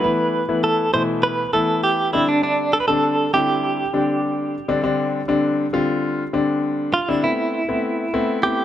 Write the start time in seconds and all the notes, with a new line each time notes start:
Already playing: B4
0.03 E3 A3 B3 E4
0.49 E3 A3 B3 E4
0.64 A4
0.93 B2 E3 A3 E4 C5
1.23 B4
1.53 E3 A3 B3 E4 A4
1.84 G4
2.13 D3 G3 C4 D4 E4
2.29 D4
2.43 D4
2.73 A4
2.80 B4
2.88 D3 G3 C4 D4 A4
3.33 D3 G3 C4 E4 G4
3.93 D3 G3 C4 D4
4.68 D3 G3 C4 D4
4.83 D3 G3 C4 D4
5.28 D3 G3 C4 D4
5.73 D3 G3 C4 F4
6.33 D3 G3 C4 D4
6.94 F4
7.08 D3 G3 C4 D4 E4
7.23 A3 B3 C4 E4
7.68 A3 B3 C4 E4
8.13 A3 B3 C4 E4
8.43 A3 B3 C4 E4 G4